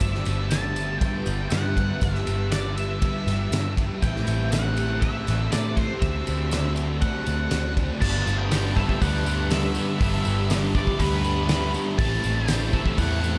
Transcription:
Already playing: D4 A5
0.00 G1 G2 D3 G3 B3 D4 G4 B4 E5, kick, ride, tambourine
0.15 snare
0.25 G1 D3 G3, ride, tambourine
0.50 G2 D3 G3 A5, snare, ride, tambourine
0.75 D3 G3, ride, tambourine
0.98 G2 D3 G5, kick, ride, tambourine
1.03 G3
1.25 G1 D3 G3, ride, tambourine
1.50 G2 D3 G3 F#5, snare, ride, tambourine
1.76 D3 G3, kick, ride, tambourine
2.00 G1 G2 D3 G3 E5, kick, ride, tambourine
2.15 snare
2.26 G1 D3 G3, ride, tambourine
2.50 G2 D3 G3 D5, snare, ride, tambourine
2.77 D3 G3 E5, ride, tambourine
3.01 G2 D3 G3, kick, ride, tambourine
3.26 G1 D3 G3, snare, ride, tambourine
3.51 G2 D3 G3, snare, ride, tambourine
3.77 D3 G3, kick, ride, tambourine
4.01 A1 A2 E3 A3 C4 E4 G4 C5 G5 A5, kick, ride, tambourine
4.16 snare
4.27 A1 E3 A3, ride, tambourine
4.52 A2 E3 A3 F#5, snare, ride, tambourine
4.77 E3 A3, ride, tambourine
5.01 A2 E5, kick, ride, tambourine
5.05 E3 A3
5.27 A1 E3 A3, snare, ride, tambourine
5.52 A2 E3 A3 D5, snare, ride, tambourine
5.76 E3 A3 C5, kick, ride, tambourine
5.99 D2 D3 A3 C4 F#4 D5 E5, kick, ride, tambourine
6.04 D4 F#4
6.27 D2 A3 D4, ride, tambourine
6.51 D3 A3 D4, snare, ride, tambourine
6.76 A3 D4, ride, tambourine
7.01 D3 A3 D4 F#5, kick, ride, tambourine
7.26 D2 A3 D4, ride, tambourine
7.51 D2 D3 A3 D4, snare, ride, tambourine
7.76 A3 D4, kick, ride, tambourine
8.01 G1 G2 D3 G3 B3 D4 G4 B4 E5 A5, kick, crash, tambourine
8.26 G1 D3 G3 B3 D4, tambourine
8.30 G3
8.38 G5
8.51 D3 G3 B3, snare, open hi-hat, tambourine
8.56 D4
8.76 G2 D3 G3 B3 D4 E5, kick, tambourine
8.89 kick
9.00 D2 G2 D3 G3 B3 D4 F#5, kick, open hi-hat, tambourine
9.25 G2 D3 G3 B3 D4, tambourine
9.49 G2 D3 G3 B3 D4 E5, snare, open hi-hat, tambourine
9.74 G3 B3 D4, tambourine
9.78 D3
9.99 G1 G2 D3 G3 B3 D4 E5 B5, kick, open hi-hat, tambourine
10.24 G1 D3 G3 B3 D4, tambourine
10.50 D3 G3 B3 D4, snare, open hi-hat, tambourine
10.73 G2 D3 G3 B3 D4 D5, kick, tambourine
10.87 kick
10.98 D2 G2 D3 G3 B3 B4, kick, open hi-hat, tambourine
11.02 D4
11.23 D3 G3 B3 D4, tambourine
11.28 G2
11.48 G2 D3 G3 B3 D4, snare, open hi-hat, tambourine
11.72 D3 G3 B3 D4, tambourine
11.97 A1 A2 E3 A3 C4 E4 C5 A5, kick, open hi-hat, tambourine
12.01 A3
12.22 A1 E3 A3 C4 E4, tambourine
12.36 G5
12.46 E3 A3 C4 E4, snare, open hi-hat, tambourine
12.72 A2 E3 A3 C4 E4 E5, kick, tambourine
12.86 kick
12.97 E2 A2 E3 A3 C4 E4 F#5, kick, open hi-hat, tambourine
13.21 A2 E3 A3 C4 E4, tambourine
13.26 E3

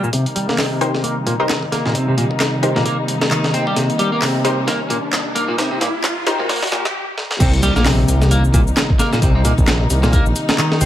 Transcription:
0.03 A#2, shaker
0.13 C3 D#3 G3 A#3 D#4, kick, closed hi-hat, riser
0.26 closed hi-hat
0.36 G3, closed hi-hat
0.49 A#3, snare
0.58 C3, snare, clap, open hi-hat
0.81 D#4 G4 A#4 C5, closed hi-hat
0.95 snare
1.04 A#3, closed hi-hat
1.27 A#2, kick, closed hi-hat
1.40 D#4 G4 A#4 C5
1.49 snare, clap, closed hi-hat
1.63 kick
1.72 A#3, snare, closed hi-hat
1.85 A#2, snare
1.95 C3, kick, closed hi-hat
2.08 C3
2.17 A#2, closed hi-hat
2.31 kick
2.40 snare, clap, closed hi-hat
2.63 D#4 G4 A#4 C5, closed hi-hat
2.76 A#2, snare
2.85 A#3, kick, closed hi-hat
3.08 closed hi-hat
3.21 snare
3.31 D#3, clap, closed hi-hat
3.44 snare
3.54 C4, closed hi-hat
3.67 G3, kick
3.76 C3, snare, closed hi-hat
3.90 closed hi-hat
3.99 G3, closed hi-hat
4.12 A#3
4.22 C3, snare, clap, open hi-hat
4.44 D#4 G4 A#4 C5, closed hi-hat
4.67 A#3, snare, closed hi-hat
4.90 A#2, closed hi-hat
5.13 snare, clap, closed hi-hat
5.35 A#3, closed hi-hat
5.48 A#2
5.58 C3, snare, closed hi-hat
5.71 C3
5.81 A#2, snare, closed hi-hat
6.04 snare, clap, closed hi-hat
6.27 D#4 G4 A#4 C5, snare, closed hi-hat
6.40 A#2
6.49 A#3, snare, open hi-hat
6.56 open hi-hat
6.63 snare, open hi-hat
6.67 open hi-hat
6.72 A#2, snare, closed hi-hat
6.85 snare
7.18 snare
7.31 snare
7.40 C2 C3 D#3 G3 A#3 D#4, kick, closed hi-hat, crash, impact, shaker
7.53 closed hi-hat
7.63 G3, closed hi-hat, shaker
7.76 A#1 A#3, snare, shaker
7.86 C3, snare, clap, open hi-hat, shaker
8.08 C2, closed hi-hat, shaker
8.22 snare, shaker
8.31 A#3, closed hi-hat, shaker
8.44 shaker
8.54 A#2, kick, closed hi-hat, shaker
8.67 shaker
8.77 snare, clap, closed hi-hat, shaker
8.90 kick
8.99 A#3, snare, closed hi-hat, shaker
9.13 A#2, snare, shaker
9.22 C2 C3, kick, closed hi-hat, shaker
9.35 C3
9.45 A#2, closed hi-hat, shaker
9.58 A#1, kick, shaker
9.68 snare, clap, closed hi-hat, shaker
9.90 C2, closed hi-hat, shaker
10.03 A#2, snare, shaker
10.13 A#3, kick, closed hi-hat, shaker
10.26 A#1, shaker
10.36 closed hi-hat, shaker
10.49 snare, shaker
10.58 D#3, clap, closed hi-hat, shaker
10.72 snare
10.81 C2 C4, closed hi-hat, shaker

